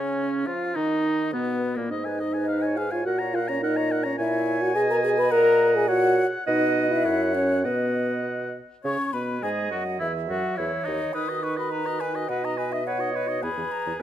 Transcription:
Already playing: C#3 C#4 C#5
0.46 F3 F4 F5
0.75 D#3 D#4 D#5
1.32 B2 B3 B4
1.76 A#2 A#3 A#4
1.91 G#2 D#4 G#4 D#5
2.05 B4 G#5
2.20 G#4 D#5
2.33 B4 G#5
2.48 B4 F5
2.62 C#5 G#5
2.77 G#4 B4 F5 G#5
2.91 F4 C#5 F5 G#5
3.06 A#2 F#4 A#4 F#5
3.19 C#5 A#5
3.33 F4 A#4 F5 F#5
3.48 C#4 C#5 A#5
3.62 D#4 A#4 D#5 F#5
3.76 C#5 A#5
3.91 A#4 F#5
4.03 C#4 C#5 A#5
4.18 A#2 E4 C#5 E5 G#5
4.62 F#4 F#5
4.75 B2 G#4 D#5 G#5
4.90 A#4 A#5
5.03 G#4 G#5
5.18 B4 B5
5.31 A#2 A#4 D#5 F#5 A#5
5.75 G#4 G#5
5.88 F#4 C#5 F#5
6.46 B2 D#4 D#5 F#5
6.91 E4 E5
7.05 F#2 C#5 F#5
7.34 C#4 C#5
7.64 B2 B3 B4 D#5 F#5
8.84 C#3 C#4 C#5 C#6
9.13 B2 B3 B4 B5
9.42 G#2 G#3 G#4 D#5 G#5
9.71 F#2 F#3 F#4 F#5
9.99 E2 E3 E4 E5
10.28 F#2 F#3 F#4 F#5
10.57 E2 E3 E4 C#5 E5
10.85 D#2 D#3 D#4 D#5
11.13 D#3 D#4 B4 D#6
11.29 F#4 D#5
11.43 D#4 B4 C#6
11.57 F#4 D#5 B5
11.71 D#4 B4 A#5
11.86 F#4 D#5
12.00 D#4 B4 G#5
12.14 F#4 D#5
12.28 B2 F#4 B4 D#5 F#5
12.43 D#4 D#5 A#5
12.58 F#4 B4 G#5
12.72 D#4 D#5 E5
12.86 F#4 B4 C#5 F#5
12.99 D#4 D#5
13.14 F#4 B4 D#5
13.28 D#4 D#5
13.42 E2 B3 G#4 B4 B5
13.57 E2 E3
13.72 A#5
13.86 E2 E3
13.99 B4 G#5

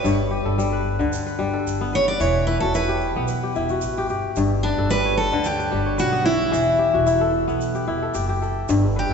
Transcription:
Already playing: B3 E4 G4 B4
0.04 G1 G2, shaker
0.31 G4
0.45 G1 A4
0.58 G3, shaker
0.72 B4
0.99 D2 D3, shaker
1.13 shaker
1.26 B4, shaker
1.39 G1 G3
1.53 A4
1.67 G1, shaker
1.81 B3
1.93 B4 C#5, shaker
2.08 D5
2.20 E1 E3 C#5, shaker
2.47 E4 B4
2.60 E1 F#4 A4
2.74 E4 B4, shaker
2.88 G4
3.01 shaker
3.16 B1 B3
3.28 shaker
3.43 G4
3.55 E1 E4, shaker
3.69 F#4, shaker
3.81 A1, shaker
3.97 G4, shaker
4.09 G1 G4, shaker
4.36 G1 G2, shaker
4.63 D4 B4
4.78 G1 A4
4.90 G3 B4, shaker
5.05 C#5
5.17 A4
5.32 D2 D3, shaker
5.44 G4, shaker
5.59 B4, shaker
5.71 G1 G3
5.86 C#5
5.98 B1 F#4 B4, shaker
6.12 B3
6.24 E4 C#5, shaker
6.52 E1 E3, shaker
6.79 G4
6.93 E1 F#4
7.06 E4, shaker
7.21 A4
7.48 B1 B3, shaker
7.61 shaker
7.75 G4, shaker
7.88 E1 E4
8.03 A4
8.14 F#1 G4, shaker
8.29 G4
8.42 A4, shaker
8.69 G1 G2, shaker
8.96 G4 B4
9.10 A4

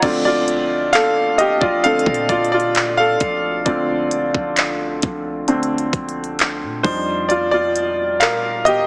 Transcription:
Already playing: D#5 F#5
0.02 A#1 D3 A3 C4 F4 D5, kick, closed hi-hat, crash
0.25 F4 D5
0.48 closed hi-hat
0.93 A4 F5, clap, closed hi-hat
1.38 G4 D#5, closed hi-hat
1.61 A#1 F4 D5, kick
1.84 D3 A3 C4 A4 F5, closed hi-hat
1.99 closed hi-hat
2.06 A#2, kick
2.14 closed hi-hat
2.29 F4 D5, kick, closed hi-hat
2.45 closed hi-hat
2.52 F4 D5
2.60 closed hi-hat
2.75 clap, closed hi-hat
2.97 A4 F5
3.20 A#1, kick, closed hi-hat
3.66 A#1 D3 A3 C4 F4 D5, kick, closed hi-hat
4.11 closed hi-hat
4.34 A#1, kick
4.57 clap, closed hi-hat
5.02 A#1, kick, closed hi-hat
5.48 D3 A3 C4, closed hi-hat
5.63 closed hi-hat
5.78 closed hi-hat
5.93 A#1, kick, closed hi-hat
6.09 closed hi-hat
6.24 closed hi-hat
6.39 clap, closed hi-hat
6.62 A#2
6.83 F2 F3 G3 D4 D#4 C5, kick, open hi-hat
7.29 F4 D5, closed hi-hat
7.51 F4 D5
7.76 closed hi-hat
8.20 A#2 A#4 F5, clap, closed hi-hat
8.65 G4 D#5, closed hi-hat

